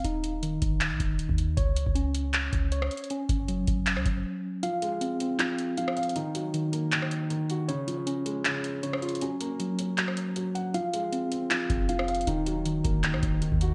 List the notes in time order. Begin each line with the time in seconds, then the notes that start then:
0.04 D#1 D#4, closed hi-hat
0.24 closed hi-hat
0.43 D#3, closed hi-hat
0.62 D#1, kick, closed hi-hat
0.81 clap, closed hi-hat
0.91 A#1
1.00 D#1, kick, closed hi-hat
1.19 closed hi-hat
1.29 D#2, kick
1.38 closed hi-hat
1.57 C#2 C#5, kick, closed hi-hat
1.76 closed hi-hat
1.86 C#2, kick
1.95 C#4, closed hi-hat
2.15 closed hi-hat
2.33 clap, closed hi-hat
2.53 C#2, kick, closed hi-hat
2.72 C#5, closed hi-hat
2.82 cross-stick
2.91 closed hi-hat
2.97 closed hi-hat
3.04 closed hi-hat
3.10 C#4, closed hi-hat
3.29 F#1, kick, closed hi-hat
3.48 F#3, closed hi-hat
3.67 F#1, kick, closed hi-hat
3.86 clap, closed hi-hat
3.97 C#2, cross-stick
4.06 F#1, kick, closed hi-hat
4.63 F3 F5, closed hi-hat
4.82 G#3, closed hi-hat
5.01 C4, closed hi-hat
5.20 C4, closed hi-hat
5.39 F3, clap, closed hi-hat
5.58 closed hi-hat
5.77 F3 F5, closed hi-hat
5.88 cross-stick
5.97 F5, closed hi-hat
6.03 closed hi-hat
6.09 closed hi-hat
6.16 D#3 D#4, closed hi-hat
6.35 F#3, closed hi-hat
6.54 D#3, closed hi-hat
6.72 A#3, closed hi-hat
6.92 D#3, clap, closed hi-hat
7.02 cross-stick
7.11 closed hi-hat
7.30 D#3, closed hi-hat
7.50 F#4, closed hi-hat
7.68 C#3 C#5, closed hi-hat
7.87 F3, closed hi-hat
8.07 C#4, closed hi-hat
8.25 G#3, closed hi-hat
8.45 C#3, clap, closed hi-hat
8.64 closed hi-hat
8.83 C#3 C#5, closed hi-hat
8.93 cross-stick
9.02 F4, closed hi-hat
9.09 closed hi-hat
9.15 closed hi-hat
9.21 F#3 C#4, closed hi-hat
9.40 A#3, closed hi-hat
9.60 F#3, closed hi-hat
9.79 C#4, closed hi-hat
9.98 F#3, clap, closed hi-hat
10.08 cross-stick
10.17 closed hi-hat
10.36 F#3, closed hi-hat
10.55 F#5, closed hi-hat
10.74 F3 F5, closed hi-hat
10.94 G#3, closed hi-hat
11.13 C4, closed hi-hat
11.32 C4, closed hi-hat
11.50 F3, clap, closed hi-hat
11.70 F1, kick, closed hi-hat
11.89 F3 F5, closed hi-hat
11.99 cross-stick
12.08 F5, closed hi-hat
12.15 closed hi-hat
12.21 closed hi-hat
12.27 D#1 D#3 D#4, closed hi-hat
12.46 F#3, closed hi-hat
12.65 D#3, closed hi-hat
12.84 D#1 A#3, kick, closed hi-hat
13.04 D#3, clap, closed hi-hat
13.14 A#1, cross-stick
13.23 D#1, kick, closed hi-hat
13.41 D#3, closed hi-hat
13.52 D#2, kick
13.61 F#4, closed hi-hat